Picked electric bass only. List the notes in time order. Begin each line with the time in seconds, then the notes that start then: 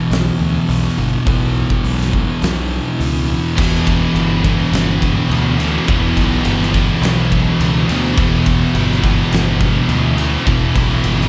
0.10 B1
0.39 D2
0.68 B1
0.97 G1
1.26 B1
1.84 B1
2.41 B1
2.99 C#2
3.58 E1
4.14 G1
4.72 G1
5.30 D2
5.88 E1
6.17 B1
6.45 G1
7.02 B1
7.59 C#2
7.89 D2
8.17 E1
8.74 G1
9.32 G1
9.88 D2
10.47 E1
10.75 B1
11.04 G1